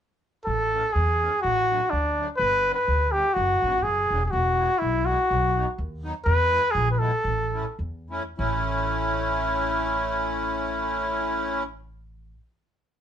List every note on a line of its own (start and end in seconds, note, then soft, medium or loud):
0.45 0.78 A1 medium
0.45 0.94 A4 medium
0.72 0.83 E3 soft
0.72 0.83 A3 soft
0.72 0.83 C#4 medium
0.93 1.27 E2 medium
0.93 1.41 G#4 medium
1.22 1.32 E3 medium
1.22 1.32 A3 soft
1.22 1.32 C#4 medium
1.42 1.76 A1 medium
1.42 1.91 F#4 medium
1.71 1.80 F#3 medium
1.71 1.80 A3 soft
1.71 1.81 D4 medium
1.90 2.24 D2 medium
1.90 2.28 D4 medium
2.18 2.29 F#3 medium
2.18 2.28 A3 medium
2.18 2.28 D4 medium
2.37 2.71 G1 medium
2.37 2.73 B4 loud
2.67 2.77 G3 medium
2.67 2.77 B3 soft
2.67 2.77 D4 medium
2.75 3.13 B4 medium
2.88 3.19 D2 medium
3.12 3.25 G3 medium
3.12 3.25 B3 medium
3.12 3.25 D4 medium
3.12 3.35 G4 medium
3.34 3.53 F#1 medium
3.34 3.85 F#4 medium
3.62 3.83 G#1 medium
3.62 3.73 F#3 medium
3.62 3.73 B3 medium
3.62 3.73 D4 medium
3.83 4.08 F#1 medium
3.83 4.25 G#4 medium
4.11 4.31 E1 medium
4.11 4.21 F#3 medium
4.11 4.22 B3 soft
4.11 4.22 D4 medium
4.26 4.32 G#4 medium
4.31 4.65 E1 medium
4.31 4.80 F#4 medium
4.58 4.69 G#3 medium
4.58 4.69 B3 soft
4.58 4.70 E4 medium
4.79 5.13 B1 medium
4.79 5.07 E4 medium
5.06 5.17 G#3 medium
5.06 5.18 B3 soft
5.06 5.18 E4 medium
5.06 5.77 F#4 medium
5.31 5.62 B1 medium
5.56 5.66 F#3 medium
5.56 5.66 B3 soft
5.56 5.66 D#4 medium
5.78 6.09 D#2 medium
6.03 6.14 F#3 medium
6.03 6.14 B3 medium
6.03 6.14 D#4 medium
6.25 6.57 E2 medium
6.25 6.73 B4 loud
6.51 6.62 G#3 medium
6.51 6.62 B3 medium
6.51 6.62 E4 medium
6.71 7.07 A#1 medium
6.71 6.91 G#4 medium
6.92 7.00 B4 medium
6.99 7.11 G#3 medium
6.99 7.12 B3 medium
6.99 7.11 E4 medium
6.99 7.78 A4 medium
7.24 7.60 A1 medium
7.54 7.65 A3 medium
7.54 7.65 C#4 medium
7.54 7.65 E4 medium
7.79 8.18 E2 medium
8.10 8.23 A3 medium
8.10 8.23 C#4 medium
8.10 8.23 E4 medium
8.38 12.34 A1 medium
8.38 11.63 A3 medium
8.38 11.63 C#4 medium
8.38 11.63 E4 medium